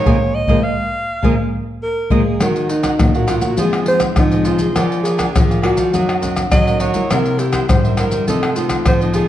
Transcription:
Already playing: C#5
0.06 A#2 F3 G#3 A#3 G#4 A#4 D#5, surdo
0.35 D#5
0.47 A#2 F3 G#3 A#3 G#4 A#4 D#5, surdo
0.64 F5
1.22 A#2 F3 G#3 A#3 G#4 A#4 D#5, surdo
1.83 A#4
2.10 A#2 F3 G#3 A#3 G#4 A#4 D#5, surdo
2.40 D#3 D#4 F#4 A#4 C#5 F#5, pandeiro, tamborim, maracas, surdo
2.56 pandeiro, maracas
2.69 D#4 A#4 C#5 F#5, pandeiro, maracas
2.82 A#3 C#4 D#4 F#4 A#4 C#5 F#5, pandeiro, tamborim, maracas, surdo
2.99 A#2, pandeiro, tamborim, maracas, surdo
3.14 F#4 A#4 C#5 F#5, pandeiro, maracas
3.27 A#3 C#4 D#4 F4 F#4 A#4 C#5 F#5, pandeiro, tamborim, maracas
3.41 A#2 A#4 C#5 F#5, pandeiro, maracas, surdo
3.46 F#4
3.57 F2 D#3 F3 G#3 C4 F4 G#4 C5 D#5, pandeiro, maracas, surdo
3.73 pandeiro, tamborim, maracas
3.86 D#3 G#3 C4 F4 G#4 C5 D#5, pandeiro
4.00 pandeiro, tamborim, maracas, surdo
4.16 C3 F3 D#4, pandeiro, tamborim, maracas, surdo
4.32 D#3 G#3 C4 G#4 C5 D#5, pandeiro, maracas
4.45 F4 G#4 C5 D#5, pandeiro, maracas
4.59 A#3 D4 G#4 C5 D#5, pandeiro, maracas, surdo
4.75 F3 G#4 A#4 D5 F5, pandeiro, tamborim, maracas, surdo
4.92 pandeiro, maracas
5.04 G#4 A#4 D5 F5, pandeiro, maracas
5.17 A#3 D4 G#4 A#4 D5 F5, pandeiro, tamborim, maracas, surdo
5.35 F3, pandeiro, tamborim, maracas, surdo
5.50 A#4 D5 F5, pandeiro, maracas
5.62 A#3 D4 F#4 G#4 A#4 D5 F5, pandeiro, tamborim
5.76 F3 A#4 D5 F5, pandeiro, maracas, surdo
5.93 F#2 D#3 F#3 A#3 C#4 F#4 A#4 D#5 F#5, pandeiro, maracas, surdo
6.09 pandeiro, tamborim, maracas
6.21 D#3 A#3 C#4 F#4 A#4 D#5 F#5, pandeiro, maracas, surdo
6.37 pandeiro, tamborim, maracas, surdo
6.52 C#3 F#3 D#5, pandeiro, tamborim, maracas, surdo
6.67 D#3 A#3 C#4 A#4 D#5 F#5, pandeiro, maracas
6.80 F#4 A#4 C#5 D#5 F#5, pandeiro, maracas
6.93 G3 A#3 E4 A#4 D#5 F#5, pandeiro, maracas, surdo
7.10 C3 E4 A#4 C5 E5, pandeiro, tamborim, maracas, surdo
7.26 pandeiro, maracas
7.39 E4 G4 A#4 C5 E5, pandeiro, maracas
7.52 G3 A#3 E4 A#4 C5 E5, pandeiro, tamborim, maracas, surdo
7.68 G2 G3 C5, pandeiro, tamborim, maracas, surdo
7.84 A#4 C5 E5, pandeiro, maracas
7.97 G3 A#3 E4 A#4 C5 E5, pandeiro, tamborim, maracas
8.11 G3 A#4 C5 E5, pandeiro, maracas, surdo
8.27 C3 F3 A3 D#4 F4 A4 C5 D#5, pandeiro, maracas, surdo
8.43 pandeiro, tamborim, maracas
8.56 F3 A3 D#4 F4 A4 C5 D#5, pandeiro, maracas
8.69 pandeiro, tamborim, maracas, surdo
8.86 C3 F3 C5, pandeiro, tamborim, maracas, surdo
9.01 F3 A3 D#4 A4 C5 D#5, pandeiro, maracas
9.14 F4 G#4 A4 C5 D#5, pandeiro, maracas

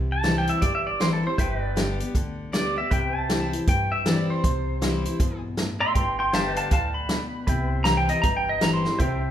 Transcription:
Already playing: C2 C3 C5 E5 G5
0.12 A5
0.23 E3 G3 C4 E4, snare, closed hi-hat
0.38 G5
0.47 E5, closed hi-hat
0.62 G1 G2 D5, kick, closed hi-hat
0.75 E5
0.87 D5
1.00 E3 G3 C4 E4 C5, snare, closed hi-hat
1.13 A4
1.23 C4 E4 C5
1.38 G1 G2 B4 C5 E5 G5, kick, closed hi-hat
1.58 B4
1.65 D5
1.76 D3 G3 B3 G4, snare, closed hi-hat
2.00 B3 G4, closed hi-hat
2.15 D2 D3, kick, closed hi-hat
2.53 D3 G3 B3 G4 D5, snare, closed hi-hat
2.76 B3 G4 E5
2.91 C2 C3 B4 E5 G5, kick, closed hi-hat
3.11 C5
3.17 A5
3.30 E3 G3 C4 E4, snare, closed hi-hat
3.53 C4 E4, closed hi-hat
3.67 G2 G5, kick, closed hi-hat
3.92 E5
4.06 E3 G3 C4 E4 D5, snare, closed hi-hat
4.30 C5
4.44 C2 C3, kick, closed hi-hat
4.81 E3 G3 C4 E4, snare, closed hi-hat
5.05 C4 E4, closed hi-hat
5.20 G2 B2, kick, closed hi-hat
5.57 A2, snare, closed hi-hat
5.80 E5 C6
5.94 G1 G2 G5 C6, kick, closed hi-hat
6.19 G5 C6
6.33 D3 G3 B3 G4 C5 E5 F5 G5 A5, snare, closed hi-hat
6.54 B4 F5 A5, closed hi-hat
6.60 D5
6.71 D2 A2 F5 A5, kick, closed hi-hat
6.94 B5
7.09 B2, snare, closed hi-hat
7.47 C2 C3 B4 E5 G5, kick, closed hi-hat
7.67 C5
7.84 E3 G3 C4 E4 A#5, snare, closed hi-hat
7.97 G5
8.08 C4 E4 D#5, closed hi-hat
8.22 G1 G2 A#5, kick, closed hi-hat
8.37 G5
8.49 D#5
8.61 E3 G3 C4 E4 A#5, snare, closed hi-hat
8.74 C6
8.85 C4 E4, snare
8.99 C2 C3 E4 G4 C5 E5 G5, kick, closed hi-hat

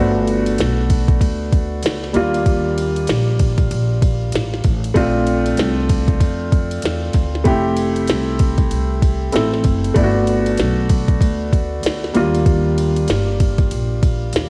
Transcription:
Already playing: G1 A3 B3 D4 F#4 C5
0.28 ride
0.46 ride
0.58 B1, snare, hi-hat pedal, ride
0.90 kick, ride
1.08 kick, ride
1.21 D2, kick, ride
1.53 kick, ride
1.83 C#2, snare, hi-hat pedal, ride
2.04 snare
2.13 D#2 G3 A#3 D4 F4, ride
2.34 ride
2.46 kick, ride
2.78 ride
2.96 ride
3.07 A#1, snare, hi-hat pedal, ride
3.39 kick, ride
3.58 kick, ride
3.71 A#1, ride
4.02 kick, ride
4.32 A1, snare, hi-hat pedal, ride
4.54 snare
4.64 A1, kick, ride
4.84 ride
4.94 A#1 A3 C4 D4 F4, kick, ride
5.27 ride
5.46 ride
5.57 C2, snare, hi-hat pedal, ride
5.89 kick, ride
6.08 kick, ride
6.20 F2, kick, ride
6.52 kick, ride
6.71 ride
6.82 E2, snare, hi-hat pedal, ride
7.13 D2, kick, ride
7.35 snare
7.44 F1 A3 C4 E4 G4, kick, ride
7.77 ride
7.96 ride
8.07 C2, snare, hi-hat pedal, ride
8.39 kick, ride
8.58 kick, ride
8.71 C2, ride
9.02 kick, ride
9.32 A1 A3 C4 E4 A4, snare, hi-hat pedal, ride
9.54 snare
9.64 F#1, kick, ride
9.84 ride
9.94 G1 A3 B3 D4 E4, kick, ride
10.03 F#4
10.27 ride
10.46 ride
10.58 B1, snare, hi-hat pedal, ride
10.90 kick, ride
11.08 kick, ride
11.21 D2, kick, ride
11.53 kick, ride
11.83 D2, snare, hi-hat pedal, ride
12.04 snare
12.14 D#2 G3 A#3 D4 F4, ride
12.35 ride
12.46 kick, ride
12.78 ride
12.96 ride
13.08 G1, snare, hi-hat pedal, ride
13.40 kick, ride
13.58 kick, ride
13.71 A#1, ride
14.03 kick, ride
14.33 D#2, snare, hi-hat pedal, ride

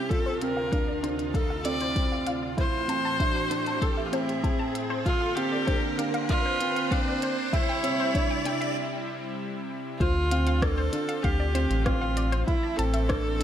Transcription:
Already playing: C3 G4, riser
0.09 D2 F4 A4 D5, kick, closed hi-hat
0.26 C5
0.42 C4 A#4, closed hi-hat
0.57 F5
0.72 D4 F5, kick, closed hi-hat
0.88 D5
1.03 D4 C5, closed hi-hat
1.19 closed hi-hat
1.33 A4 F5, kick, closed hi-hat
1.50 F5
1.65 C4 D5, closed hi-hat
1.81 C5, closed hi-hat
1.96 C4, kick, closed hi-hat
2.12 F5
2.27 F5, closed hi-hat
2.43 D5
2.57 A2 E3 C4 E4 C5, kick, closed hi-hat
2.88 C4 A5, closed hi-hat
3.05 A5
3.19 D4 E5, kick, closed hi-hat
3.36 C5
3.50 D4, closed hi-hat
3.66 A5, closed hi-hat
3.82 A4 A5, kick, closed hi-hat
3.97 E5
4.06 F4
4.12 C4 E4 C5, closed hi-hat
4.29 closed hi-hat
4.44 C4 A5, kick, closed hi-hat
4.59 A5
4.75 E5, closed hi-hat
4.90 C5
5.05 D3 A#3 F4, kick, closed hi-hat
5.21 F5
5.35 C4 G4 F5, closed hi-hat
5.52 D5
5.67 D4 C5, kick, closed hi-hat
5.98 D4 F5, closed hi-hat
6.14 F5, closed hi-hat
6.29 F4 D5, kick, closed hi-hat
6.46 C5
6.61 C4, closed hi-hat
6.76 F5, closed hi-hat
6.91 C4 D4 F5, kick, closed hi-hat
7.08 D5
7.22 C5, closed hi-hat
7.53 C3 G3 E4 G5, kick, closed hi-hat
7.69 G5
7.83 C4 E5, closed hi-hat
8.00 C5
8.14 D4, kick, closed hi-hat
8.31 G5
8.45 D4 G5, closed hi-hat
8.61 E5, closed hi-hat
9.99 D2 D3 C4 F4 C5, kick, closed hi-hat
10.31 C4 F5, closed hi-hat
10.47 F5, closed hi-hat
10.61 D4 A4 D5, kick, cross-stick, closed hi-hat
10.78 C5
10.93 D4, closed hi-hat
11.09 F5, closed hi-hat
11.23 D2 G4 F5, kick, closed hi-hat
11.40 D5
11.55 C4 C5, closed hi-hat
11.70 A1, closed hi-hat
11.85 C4 F4 F5, kick, cross-stick, closed hi-hat
12.01 F5
12.17 D5, closed hi-hat
12.32 C5, closed hi-hat
12.46 E3 A3 E4, kick, closed hi-hat
12.63 A5
12.77 A1 C4 A4 A5, closed hi-hat
12.94 E5, closed hi-hat
13.09 D4 C5, kick, cross-stick, closed hi-hat
13.40 D4

